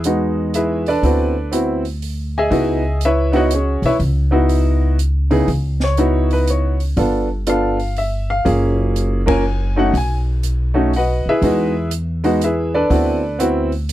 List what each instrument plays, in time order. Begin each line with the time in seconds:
Already playing: upright bass E2
0.04 grand piano G#3 B3 D#4 F#4, closed hi-hat
0.54 grand piano E4 G#4 B4 E5, closed hi-hat
0.86 grand piano D4 A4 B4 D5, open hi-hat
1.03 upright bass D2, grand piano B3 C4 E4 F#4, kick, open hi-hat
1.51 grand piano B3 C4 E4 F#4, closed hi-hat
1.85 open hi-hat
2.02 open hi-hat
2.38 grand piano G#4 D#5 E5 G#5
2.50 upright bass C#2, grand piano B3 D#4 E4 F#4, kick, open hi-hat
3.01 closed hi-hat
3.05 grand piano E4 B4 C#5 E5
3.32 grand piano B3 D#4 E4 F#4 F#5, open hi-hat
3.36 grand piano F#4 C#5 D#5
3.51 grand piano C#4 F#4 G#4 C#5, closed hi-hat
3.82 upright bass B1, grand piano E4 B4 C#5 E5, open hi-hat
3.99 upright bass C#2, kick, open hi-hat
4.31 grand piano B3 D#4 E4 F#4
4.49 open hi-hat
4.99 closed hi-hat
5.31 grand piano C#3 B3 D#4 E4 G#4, open hi-hat
5.48 upright bass C#2, kick, open hi-hat
5.80 grand piano C#5, snare
5.97 grand piano B3 D#4 E4 F#4, closed hi-hat
6.30 grand piano B4, open hi-hat
6.47 grand piano C#5, closed hi-hat
6.80 open hi-hat
6.97 upright bass G1, grand piano B3 D4 F4 A4, kick, open hi-hat
7.47 grand piano B3 D4 F4 A4 F5, closed hi-hat
7.79 open hi-hat
7.96 grand piano E5, open hi-hat
8.30 grand piano F5
8.45 upright bass F#1, grand piano A#3 C#4 F4 G#4, kick, open hi-hat
8.96 closed hi-hat
9.26 grand piano A#3 C#4 F4 A#4 G#5, kick, ride
9.76 grand piano A3 C#4 D#4 F#4 F#5
9.94 upright bass B1, grand piano G#5, kick, open hi-hat
10.43 closed hi-hat
10.74 grand piano A3 C#4 D#4 F#4
10.93 grand piano F#4 B4 D#5 F#5, open hi-hat
11.26 grand piano G#4 B4 E5, muted upright bass stroke
11.30 grand piano E4
11.42 upright bass E2, grand piano G#3 B3 D#4 F#4, kick, open hi-hat
11.91 closed hi-hat
12.24 grand piano G#3 B3 D#4 F#4, open hi-hat
12.41 grand piano E4 G#4 B4 E5, closed hi-hat
12.74 grand piano D4 A4 B4 D5
12.90 upright bass D2, grand piano B3 C4 E4 F#4, kick, open hi-hat
13.39 grand piano B3 C4 E4 F#4, closed hi-hat
13.72 open hi-hat
13.89 closed hi-hat